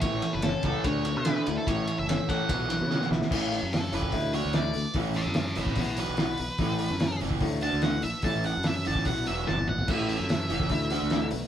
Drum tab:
CC |----------------|----------------|x---------------|----------------|
RD |x-x-x-x-x-x-x-x-|x-x-x-x-x-x-----|----------------|----------------|
HH |----------------|----------------|--o-o-o-o-o-o-o-|o-o-o-o-o-o-o-o-|
SD |---oo-------o---|----o-------oooo|----o-------o---|---oo--o----o---|
T1 |----------------|----------------|----------------|----------------|
T2 |----------------|----------------|----------------|----------------|
FT |----------------|----------------|----------------|----------------|
BD |o-----o-o-------|o-----o-o-------|o------oo-------|o------oo-------|

CC |----------------|----------------|x---------------|
RD |----------------|----------------|----------------|
HH |o-o-o-o-o-o-o-o-|o-o-o-o-o-o-----|--o-o-o-o-o-o-o-|
SD |---oo-------o---|----o--o----o---|---oo-------o---|
T1 |----------------|-------------o--|----------------|
T2 |----------------|--------------o-|----------------|
FT |----------------|---------------o|----------------|
BD |o------oo-------|o------oo-------|o------oo-------|